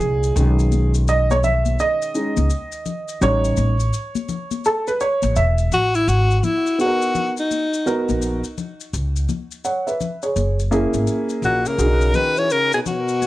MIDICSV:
0, 0, Header, 1, 6, 480
1, 0, Start_track
1, 0, Key_signature, 5, "minor"
1, 0, Tempo, 714286
1, 243, Time_signature, 4, 2, 24, 8
1, 8916, End_track
2, 0, Start_track
2, 0, Title_t, "Alto saxophone"
2, 0, Program_c, 0, 65
2, 3852, Note_on_c, 0, 66, 101
2, 4002, Note_on_c, 0, 64, 102
2, 4012, Note_off_c, 0, 66, 0
2, 4089, Note_on_c, 0, 66, 107
2, 4099, Note_off_c, 0, 64, 0
2, 4302, Note_off_c, 0, 66, 0
2, 4302, Note_on_c, 0, 66, 61
2, 4329, Note_on_c, 0, 64, 92
2, 4339, Note_off_c, 0, 66, 0
2, 4566, Note_off_c, 0, 64, 0
2, 4574, Note_on_c, 0, 66, 95
2, 4933, Note_off_c, 0, 66, 0
2, 4970, Note_on_c, 0, 63, 85
2, 5415, Note_off_c, 0, 63, 0
2, 7693, Note_on_c, 0, 66, 84
2, 7844, Note_on_c, 0, 70, 97
2, 7854, Note_off_c, 0, 66, 0
2, 8169, Note_on_c, 0, 71, 101
2, 8179, Note_off_c, 0, 70, 0
2, 8321, Note_on_c, 0, 73, 96
2, 8331, Note_off_c, 0, 71, 0
2, 8412, Note_on_c, 0, 70, 101
2, 8422, Note_off_c, 0, 73, 0
2, 8559, Note_off_c, 0, 70, 0
2, 8562, Note_on_c, 0, 68, 77
2, 8600, Note_off_c, 0, 68, 0
2, 8650, Note_on_c, 0, 66, 88
2, 8916, Note_off_c, 0, 66, 0
2, 8916, End_track
3, 0, Start_track
3, 0, Title_t, "Upright piano"
3, 0, Program_c, 1, 0
3, 0, Note_on_c, 1, 46, 51
3, 0, Note_on_c, 1, 56, 55
3, 0, Note_on_c, 1, 64, 63
3, 0, Note_on_c, 1, 68, 114
3, 214, Note_off_c, 1, 56, 0
3, 216, Note_off_c, 1, 46, 0
3, 217, Note_off_c, 1, 64, 0
3, 237, Note_on_c, 1, 56, 56
3, 241, Note_on_c, 1, 61, 58
3, 245, Note_on_c, 1, 51, 68
3, 611, Note_off_c, 1, 68, 0
3, 731, Note_on_c, 1, 75, 99
3, 881, Note_on_c, 1, 73, 99
3, 883, Note_off_c, 1, 75, 0
3, 914, Note_off_c, 1, 73, 0
3, 967, Note_on_c, 1, 76, 98
3, 1188, Note_off_c, 1, 76, 0
3, 1210, Note_on_c, 1, 75, 105
3, 1429, Note_off_c, 1, 56, 0
3, 1432, Note_off_c, 1, 61, 0
3, 1439, Note_on_c, 1, 56, 53
3, 1442, Note_on_c, 1, 61, 52
3, 1445, Note_on_c, 1, 63, 62
3, 1657, Note_off_c, 1, 56, 0
3, 1658, Note_off_c, 1, 61, 0
3, 1660, Note_off_c, 1, 63, 0
3, 2137, Note_off_c, 1, 51, 0
3, 2158, Note_on_c, 1, 55, 60
3, 2162, Note_on_c, 1, 61, 54
3, 2168, Note_on_c, 1, 63, 68
3, 2170, Note_on_c, 1, 73, 105
3, 2195, Note_off_c, 1, 75, 0
3, 2503, Note_off_c, 1, 55, 0
3, 2505, Note_off_c, 1, 61, 0
3, 2508, Note_off_c, 1, 63, 0
3, 3130, Note_on_c, 1, 69, 94
3, 3155, Note_off_c, 1, 73, 0
3, 3277, Note_on_c, 1, 71, 88
3, 3282, Note_off_c, 1, 69, 0
3, 3366, Note_on_c, 1, 73, 91
3, 3367, Note_off_c, 1, 71, 0
3, 3605, Note_on_c, 1, 76, 90
3, 3612, Note_off_c, 1, 73, 0
3, 3827, Note_off_c, 1, 76, 0
3, 4559, Note_on_c, 1, 59, 62
3, 4560, Note_on_c, 1, 63, 57
3, 4564, Note_on_c, 1, 66, 58
3, 4568, Note_on_c, 1, 68, 60
3, 4611, Note_on_c, 1, 70, 68
3, 4620, Note_off_c, 1, 68, 0
3, 4922, Note_off_c, 1, 59, 0
3, 4923, Note_off_c, 1, 63, 0
3, 4924, Note_off_c, 1, 66, 0
3, 4948, Note_off_c, 1, 70, 0
3, 5281, Note_on_c, 1, 59, 72
3, 5285, Note_on_c, 1, 63, 68
3, 5285, Note_on_c, 1, 66, 66
3, 5289, Note_on_c, 1, 70, 84
3, 5643, Note_off_c, 1, 59, 0
3, 5645, Note_off_c, 1, 63, 0
3, 5645, Note_off_c, 1, 66, 0
3, 5647, Note_off_c, 1, 70, 0
3, 6482, Note_on_c, 1, 78, 69
3, 6487, Note_on_c, 1, 73, 53
3, 6626, Note_off_c, 1, 78, 0
3, 6629, Note_off_c, 1, 73, 0
3, 6632, Note_on_c, 1, 76, 65
3, 6637, Note_on_c, 1, 71, 59
3, 6861, Note_off_c, 1, 76, 0
3, 6864, Note_off_c, 1, 71, 0
3, 6874, Note_on_c, 1, 73, 63
3, 6879, Note_on_c, 1, 68, 56
3, 7102, Note_off_c, 1, 73, 0
3, 7105, Note_off_c, 1, 68, 0
3, 7197, Note_on_c, 1, 58, 84
3, 7198, Note_on_c, 1, 61, 78
3, 7201, Note_on_c, 1, 64, 81
3, 7205, Note_on_c, 1, 68, 93
3, 7885, Note_off_c, 1, 58, 0
3, 7885, Note_off_c, 1, 61, 0
3, 7887, Note_off_c, 1, 64, 0
3, 7889, Note_off_c, 1, 68, 0
3, 7913, Note_on_c, 1, 61, 70
3, 7916, Note_on_c, 1, 62, 51
3, 7921, Note_on_c, 1, 66, 63
3, 7923, Note_on_c, 1, 68, 78
3, 7960, Note_on_c, 1, 63, 64
3, 7975, Note_off_c, 1, 62, 0
3, 8602, Note_off_c, 1, 61, 0
3, 8606, Note_off_c, 1, 66, 0
3, 8608, Note_off_c, 1, 68, 0
3, 8626, Note_off_c, 1, 63, 0
3, 8916, End_track
4, 0, Start_track
4, 0, Title_t, "Trombone"
4, 0, Program_c, 2, 57
4, 7679, Note_on_c, 2, 46, 67
4, 7834, Note_on_c, 2, 49, 77
4, 7844, Note_off_c, 2, 46, 0
4, 8159, Note_on_c, 2, 51, 88
4, 8169, Note_off_c, 2, 49, 0
4, 8315, Note_on_c, 2, 52, 80
4, 8325, Note_off_c, 2, 51, 0
4, 8408, Note_on_c, 2, 49, 84
4, 8418, Note_off_c, 2, 52, 0
4, 8557, Note_off_c, 2, 49, 0
4, 8561, Note_on_c, 2, 47, 69
4, 8600, Note_off_c, 2, 47, 0
4, 8656, Note_on_c, 2, 47, 85
4, 8916, Note_off_c, 2, 47, 0
4, 8916, End_track
5, 0, Start_track
5, 0, Title_t, "Upright bass"
5, 0, Program_c, 3, 32
5, 0, Note_on_c, 3, 36, 100
5, 215, Note_off_c, 3, 36, 0
5, 240, Note_on_c, 3, 35, 109
5, 1175, Note_off_c, 3, 35, 0
5, 1594, Note_on_c, 3, 37, 93
5, 1673, Note_off_c, 3, 37, 0
5, 2161, Note_on_c, 3, 33, 112
5, 2376, Note_off_c, 3, 33, 0
5, 2402, Note_on_c, 3, 33, 97
5, 2616, Note_off_c, 3, 33, 0
5, 3514, Note_on_c, 3, 33, 98
5, 3605, Note_on_c, 3, 28, 105
5, 3615, Note_off_c, 3, 33, 0
5, 3818, Note_off_c, 3, 28, 0
5, 3843, Note_on_c, 3, 33, 88
5, 4057, Note_off_c, 3, 33, 0
5, 4083, Note_on_c, 3, 32, 100
5, 4297, Note_off_c, 3, 32, 0
5, 5437, Note_on_c, 3, 34, 85
5, 5650, Note_off_c, 3, 34, 0
5, 6003, Note_on_c, 3, 37, 95
5, 6217, Note_off_c, 3, 37, 0
5, 6962, Note_on_c, 3, 30, 90
5, 7311, Note_off_c, 3, 30, 0
5, 7350, Note_on_c, 3, 32, 85
5, 7431, Note_off_c, 3, 32, 0
5, 7675, Note_on_c, 3, 34, 89
5, 7813, Note_off_c, 3, 34, 0
5, 7918, Note_on_c, 3, 35, 91
5, 8134, Note_off_c, 3, 35, 0
5, 8916, End_track
6, 0, Start_track
6, 0, Title_t, "Drums"
6, 3, Note_on_c, 9, 64, 62
6, 3, Note_on_c, 9, 82, 41
6, 71, Note_off_c, 9, 64, 0
6, 71, Note_off_c, 9, 82, 0
6, 157, Note_on_c, 9, 82, 51
6, 224, Note_off_c, 9, 82, 0
6, 245, Note_on_c, 9, 82, 77
6, 312, Note_off_c, 9, 82, 0
6, 397, Note_on_c, 9, 82, 45
6, 464, Note_off_c, 9, 82, 0
6, 482, Note_on_c, 9, 63, 52
6, 482, Note_on_c, 9, 82, 49
6, 549, Note_off_c, 9, 63, 0
6, 549, Note_off_c, 9, 82, 0
6, 634, Note_on_c, 9, 82, 51
6, 701, Note_off_c, 9, 82, 0
6, 724, Note_on_c, 9, 82, 61
6, 791, Note_off_c, 9, 82, 0
6, 878, Note_on_c, 9, 63, 66
6, 878, Note_on_c, 9, 82, 50
6, 945, Note_off_c, 9, 63, 0
6, 945, Note_off_c, 9, 82, 0
6, 966, Note_on_c, 9, 64, 74
6, 966, Note_on_c, 9, 82, 49
6, 1033, Note_off_c, 9, 64, 0
6, 1033, Note_off_c, 9, 82, 0
6, 1112, Note_on_c, 9, 63, 63
6, 1112, Note_on_c, 9, 82, 46
6, 1179, Note_off_c, 9, 63, 0
6, 1179, Note_off_c, 9, 82, 0
6, 1206, Note_on_c, 9, 82, 59
6, 1273, Note_off_c, 9, 82, 0
6, 1357, Note_on_c, 9, 82, 51
6, 1424, Note_off_c, 9, 82, 0
6, 1444, Note_on_c, 9, 82, 51
6, 1511, Note_off_c, 9, 82, 0
6, 1591, Note_on_c, 9, 63, 74
6, 1591, Note_on_c, 9, 82, 53
6, 1658, Note_off_c, 9, 63, 0
6, 1658, Note_off_c, 9, 82, 0
6, 1681, Note_on_c, 9, 82, 64
6, 1748, Note_off_c, 9, 82, 0
6, 1828, Note_on_c, 9, 82, 49
6, 1895, Note_off_c, 9, 82, 0
6, 1920, Note_on_c, 9, 64, 59
6, 1920, Note_on_c, 9, 82, 45
6, 1988, Note_off_c, 9, 64, 0
6, 1988, Note_off_c, 9, 82, 0
6, 2072, Note_on_c, 9, 82, 49
6, 2140, Note_off_c, 9, 82, 0
6, 2164, Note_on_c, 9, 82, 70
6, 2231, Note_off_c, 9, 82, 0
6, 2315, Note_on_c, 9, 82, 48
6, 2382, Note_off_c, 9, 82, 0
6, 2397, Note_on_c, 9, 63, 49
6, 2397, Note_on_c, 9, 82, 49
6, 2465, Note_off_c, 9, 63, 0
6, 2465, Note_off_c, 9, 82, 0
6, 2552, Note_on_c, 9, 82, 54
6, 2619, Note_off_c, 9, 82, 0
6, 2643, Note_on_c, 9, 82, 64
6, 2710, Note_off_c, 9, 82, 0
6, 2790, Note_on_c, 9, 63, 75
6, 2790, Note_on_c, 9, 82, 50
6, 2858, Note_off_c, 9, 63, 0
6, 2858, Note_off_c, 9, 82, 0
6, 2881, Note_on_c, 9, 64, 70
6, 2881, Note_on_c, 9, 82, 50
6, 2948, Note_off_c, 9, 64, 0
6, 2948, Note_off_c, 9, 82, 0
6, 3032, Note_on_c, 9, 63, 64
6, 3032, Note_on_c, 9, 82, 47
6, 3099, Note_off_c, 9, 63, 0
6, 3099, Note_off_c, 9, 82, 0
6, 3122, Note_on_c, 9, 82, 61
6, 3189, Note_off_c, 9, 82, 0
6, 3276, Note_on_c, 9, 82, 51
6, 3343, Note_off_c, 9, 82, 0
6, 3363, Note_on_c, 9, 82, 50
6, 3430, Note_off_c, 9, 82, 0
6, 3510, Note_on_c, 9, 63, 72
6, 3510, Note_on_c, 9, 82, 55
6, 3577, Note_off_c, 9, 63, 0
6, 3577, Note_off_c, 9, 82, 0
6, 3601, Note_on_c, 9, 82, 70
6, 3669, Note_off_c, 9, 82, 0
6, 3750, Note_on_c, 9, 82, 50
6, 3817, Note_off_c, 9, 82, 0
6, 3844, Note_on_c, 9, 64, 63
6, 3844, Note_on_c, 9, 82, 48
6, 3911, Note_off_c, 9, 64, 0
6, 3911, Note_off_c, 9, 82, 0
6, 3996, Note_on_c, 9, 82, 50
6, 4063, Note_off_c, 9, 82, 0
6, 4086, Note_on_c, 9, 82, 72
6, 4154, Note_off_c, 9, 82, 0
6, 4239, Note_on_c, 9, 82, 43
6, 4306, Note_off_c, 9, 82, 0
6, 4324, Note_on_c, 9, 63, 43
6, 4324, Note_on_c, 9, 64, 63
6, 4324, Note_on_c, 9, 82, 43
6, 4391, Note_off_c, 9, 63, 0
6, 4391, Note_off_c, 9, 64, 0
6, 4391, Note_off_c, 9, 82, 0
6, 4479, Note_on_c, 9, 82, 46
6, 4546, Note_off_c, 9, 82, 0
6, 4566, Note_on_c, 9, 82, 60
6, 4633, Note_off_c, 9, 82, 0
6, 4717, Note_on_c, 9, 82, 47
6, 4785, Note_off_c, 9, 82, 0
6, 4805, Note_on_c, 9, 64, 63
6, 4805, Note_on_c, 9, 82, 45
6, 4872, Note_off_c, 9, 64, 0
6, 4872, Note_off_c, 9, 82, 0
6, 4953, Note_on_c, 9, 82, 42
6, 5020, Note_off_c, 9, 82, 0
6, 5047, Note_on_c, 9, 63, 37
6, 5047, Note_on_c, 9, 82, 55
6, 5114, Note_off_c, 9, 63, 0
6, 5114, Note_off_c, 9, 82, 0
6, 5199, Note_on_c, 9, 82, 49
6, 5266, Note_off_c, 9, 82, 0
6, 5287, Note_on_c, 9, 82, 48
6, 5354, Note_off_c, 9, 82, 0
6, 5435, Note_on_c, 9, 63, 69
6, 5435, Note_on_c, 9, 82, 47
6, 5502, Note_off_c, 9, 63, 0
6, 5502, Note_off_c, 9, 82, 0
6, 5524, Note_on_c, 9, 82, 64
6, 5591, Note_off_c, 9, 82, 0
6, 5671, Note_on_c, 9, 82, 42
6, 5738, Note_off_c, 9, 82, 0
6, 5764, Note_on_c, 9, 64, 61
6, 5764, Note_on_c, 9, 82, 43
6, 5831, Note_off_c, 9, 64, 0
6, 5831, Note_off_c, 9, 82, 0
6, 5917, Note_on_c, 9, 82, 46
6, 5985, Note_off_c, 9, 82, 0
6, 6005, Note_on_c, 9, 82, 67
6, 6073, Note_off_c, 9, 82, 0
6, 6156, Note_on_c, 9, 82, 46
6, 6223, Note_off_c, 9, 82, 0
6, 6242, Note_on_c, 9, 63, 45
6, 6242, Note_on_c, 9, 64, 60
6, 6242, Note_on_c, 9, 82, 42
6, 6309, Note_off_c, 9, 63, 0
6, 6309, Note_off_c, 9, 64, 0
6, 6309, Note_off_c, 9, 82, 0
6, 6394, Note_on_c, 9, 82, 47
6, 6461, Note_off_c, 9, 82, 0
6, 6483, Note_on_c, 9, 82, 56
6, 6550, Note_off_c, 9, 82, 0
6, 6637, Note_on_c, 9, 82, 48
6, 6704, Note_off_c, 9, 82, 0
6, 6724, Note_on_c, 9, 64, 68
6, 6724, Note_on_c, 9, 82, 46
6, 6792, Note_off_c, 9, 64, 0
6, 6792, Note_off_c, 9, 82, 0
6, 6872, Note_on_c, 9, 82, 42
6, 6939, Note_off_c, 9, 82, 0
6, 6963, Note_on_c, 9, 63, 39
6, 6963, Note_on_c, 9, 82, 59
6, 7030, Note_off_c, 9, 63, 0
6, 7030, Note_off_c, 9, 82, 0
6, 7120, Note_on_c, 9, 82, 48
6, 7187, Note_off_c, 9, 82, 0
6, 7204, Note_on_c, 9, 82, 44
6, 7271, Note_off_c, 9, 82, 0
6, 7350, Note_on_c, 9, 63, 66
6, 7350, Note_on_c, 9, 82, 44
6, 7417, Note_off_c, 9, 63, 0
6, 7417, Note_off_c, 9, 82, 0
6, 7439, Note_on_c, 9, 82, 66
6, 7506, Note_off_c, 9, 82, 0
6, 7589, Note_on_c, 9, 82, 44
6, 7656, Note_off_c, 9, 82, 0
6, 7679, Note_on_c, 9, 64, 54
6, 7679, Note_on_c, 9, 82, 43
6, 7746, Note_off_c, 9, 64, 0
6, 7746, Note_off_c, 9, 82, 0
6, 7833, Note_on_c, 9, 82, 47
6, 7900, Note_off_c, 9, 82, 0
6, 7923, Note_on_c, 9, 82, 68
6, 7990, Note_off_c, 9, 82, 0
6, 8072, Note_on_c, 9, 82, 43
6, 8139, Note_off_c, 9, 82, 0
6, 8157, Note_on_c, 9, 63, 46
6, 8157, Note_on_c, 9, 64, 62
6, 8157, Note_on_c, 9, 82, 48
6, 8224, Note_off_c, 9, 63, 0
6, 8224, Note_off_c, 9, 64, 0
6, 8224, Note_off_c, 9, 82, 0
6, 8309, Note_on_c, 9, 82, 48
6, 8376, Note_off_c, 9, 82, 0
6, 8401, Note_on_c, 9, 82, 57
6, 8468, Note_off_c, 9, 82, 0
6, 8552, Note_on_c, 9, 82, 46
6, 8619, Note_off_c, 9, 82, 0
6, 8642, Note_on_c, 9, 64, 68
6, 8642, Note_on_c, 9, 82, 49
6, 8709, Note_off_c, 9, 64, 0
6, 8709, Note_off_c, 9, 82, 0
6, 8792, Note_on_c, 9, 82, 41
6, 8859, Note_off_c, 9, 82, 0
6, 8884, Note_on_c, 9, 63, 43
6, 8884, Note_on_c, 9, 82, 54
6, 8916, Note_off_c, 9, 63, 0
6, 8916, Note_off_c, 9, 82, 0
6, 8916, End_track
0, 0, End_of_file